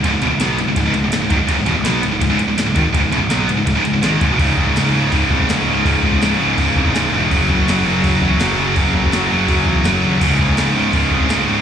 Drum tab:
CC |----------------|----------------|----------------|x---x---x---x---|
RD |x-x-x-x-x-x-x-x-|x-x-x-x-x-x-x-x-|x-x-x-x-x-x-x-x-|----------------|
SD |----o-------o---|----o-------o---|----o-------o---|----o-------o---|
BD |o-------o-----o-|o-------o-----o-|o-------o-----o-|o-oo----o-oo----|

CC |x---x---x---x---|x---x---x---x---|x---x---x---x---|x---x---x---x---|
RD |----------------|----------------|----------------|----------------|
SD |----o-------o---|----o-------o---|----o-------o---|----o-------o---|
BD |o-oo----o-oo----|o-oo----o-oo----|o-oo----o-oo----|o-oo----o-oo----|